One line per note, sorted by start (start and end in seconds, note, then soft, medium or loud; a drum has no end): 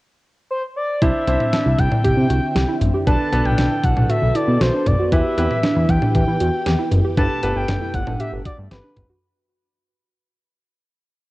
0.50 0.62 C5 medium
0.76 1.03 D5 medium
1.02 1.12 C2 loud
1.02 5.08 D3 medium
1.02 3.05 C4 medium
1.02 1.23 D4 medium
1.02 3.05 E4 medium
1.02 1.21 E4 medium
1.02 1.23 E4 medium
1.02 1.23 C5 medium
1.02 1.80 E5 loud
1.02 kick loud
1.02 closed hi-hat medium
1.27 1.37 C2 loud
1.27 1.46 C4 medium
1.27 2.12 D4 medium
1.27 2.12 E4 medium
1.27 2.12 C5 medium
1.27 closed hi-hat medium
1.40 mid tom medium
1.53 1.62 D4 medium
1.53 snare loud
1.53 closed hi-hat medium
1.66 1.76 C2 medium
1.66 1.85 E4 medium
1.79 1.88 C2 loud
1.79 2.04 G5 loud
1.79 kick medium
1.79 closed hi-hat medium
1.92 2.01 D4 medium
1.92 mid tom medium
2.04 2.14 C2 loud
2.04 2.23 G4 medium
2.04 2.77 G5 loud
2.04 kick medium
2.04 closed hi-hat medium
2.17 2.27 C3 loud
2.30 2.40 C2 loud
2.30 2.49 F#4 medium
2.30 closed hi-hat medium
2.56 2.65 C2 loud
2.56 2.65 G4 medium
2.56 snare loud
2.56 closed hi-hat medium
2.69 2.87 E4 medium
2.81 2.91 A1 medium
2.81 closed hi-hat medium
2.81 mid tom medium
2.94 3.03 G4 medium
3.07 3.17 B1 loud
3.07 7.13 B3 medium
3.07 3.26 D4 medium
3.07 3.28 D4 medium
3.07 3.28 A4 medium
3.07 5.10 A4 medium
3.07 3.28 B4 medium
3.07 3.47 A5 loud
3.07 kick loud
3.07 closed hi-hat medium
3.33 3.42 B1 loud
3.33 3.51 B3 medium
3.33 4.17 D4 medium
3.33 4.17 A4 medium
3.33 4.17 B4 medium
3.33 closed hi-hat medium
3.45 3.55 B1 loud
3.45 3.85 G5 loud
3.45 mid tom medium
3.58 3.68 B1 loud
3.58 3.68 D4 medium
3.58 snare loud
3.58 closed hi-hat medium
3.71 3.90 E4 medium
3.84 3.93 B1 loud
3.84 4.09 F#5 loud
3.84 kick medium
3.84 closed hi-hat medium
3.97 4.06 B1 loud
3.97 4.06 D4 medium
3.97 mid tom medium
4.10 4.28 F#4 medium
4.10 4.37 E5 loud
4.10 closed hi-hat medium
4.22 4.32 B1 loud
4.35 4.54 E4 medium
4.35 4.62 D5 medium
4.35 closed hi-hat medium
4.48 4.58 B2 loud
4.61 4.71 B1 loud
4.61 4.70 F#4 medium
4.61 4.88 C5 medium
4.61 snare loud
4.61 closed hi-hat medium
4.74 4.92 D4 medium
4.86 4.96 B1 medium
4.86 5.12 D5 medium
4.86 kick loud
4.86 closed hi-hat medium
4.86 mid tom medium
4.99 5.09 F#4 medium
5.12 5.22 E2 loud
5.12 7.15 E3 medium
5.12 5.31 E4 medium
5.12 5.33 E4 medium
5.12 9.18 G4 medium
5.12 5.33 G4 medium
5.12 5.33 B4 medium
5.12 5.91 E5 loud
5.12 kick loud
5.12 closed hi-hat medium
5.38 5.47 E2 loud
5.38 5.56 C4 medium
5.38 6.22 E4 medium
5.38 6.22 G4 medium
5.38 6.22 B4 medium
5.38 closed hi-hat medium
5.51 mid tom medium
5.63 5.73 D4 medium
5.63 snare loud
5.63 closed hi-hat medium
5.76 5.86 E2 medium
5.76 5.95 E4 medium
5.89 5.99 E2 loud
5.89 6.14 G5 medium
5.89 kick medium
5.89 closed hi-hat medium
6.02 6.11 D4 medium
6.02 mid tom loud
6.15 6.24 E2 loud
6.15 6.33 G4 medium
6.15 6.88 G5 medium
6.15 kick medium
6.15 closed hi-hat medium
6.28 6.37 E3 medium
6.40 6.50 E2 medium
6.40 6.59 F#4 medium
6.40 closed hi-hat medium
6.66 6.76 E2 loud
6.66 6.75 G4 medium
6.66 snare loud
6.66 closed hi-hat medium
6.79 6.97 E4 medium
6.91 7.01 F#1 loud
6.91 closed hi-hat medium
6.91 mid tom medium
7.04 7.14 G4 medium
7.17 7.27 G1 loud
7.17 9.20 B2 medium
7.17 9.20 A3 medium
7.17 7.36 D4 medium
7.17 7.38 G4 medium
7.17 7.38 A4 medium
7.17 7.38 B4 medium
7.17 7.53 A5 loud
7.17 kick loud
7.17 closed hi-hat medium
7.43 7.53 G1 loud
7.43 7.61 B3 medium
7.43 8.27 G4 medium
7.43 8.27 A4 medium
7.43 8.27 B4 medium
7.43 closed hi-hat medium
7.56 7.65 G1 medium
7.56 7.96 G5 loud
7.68 7.78 G1 medium
7.68 7.78 D4 medium
7.68 snare loud
7.68 closed hi-hat medium
7.68 mid tom medium
7.81 8.00 E4 medium
7.94 8.04 G1 loud
7.94 8.19 F#5 loud
7.94 kick medium
7.94 closed hi-hat medium
8.07 8.17 G1 loud
8.07 8.16 D4 medium
8.07 mid tom medium
8.20 8.38 G4 medium
8.20 8.31 E5 medium
8.20 closed hi-hat medium
8.33 8.42 G1 medium
8.45 8.64 F#4 medium
8.45 8.57 D5 medium
8.45 kick medium
8.45 closed hi-hat medium
8.58 8.68 G2 loud
8.71 8.81 G1 loud
8.71 8.80 G4 medium
8.71 9.07 B4 medium
8.71 snare loud
8.71 closed hi-hat medium
8.84 9.02 D4 medium
8.96 9.06 G1 loud
8.96 kick medium
8.96 closed hi-hat medium
8.96 mid tom medium
9.10 9.19 F#4 medium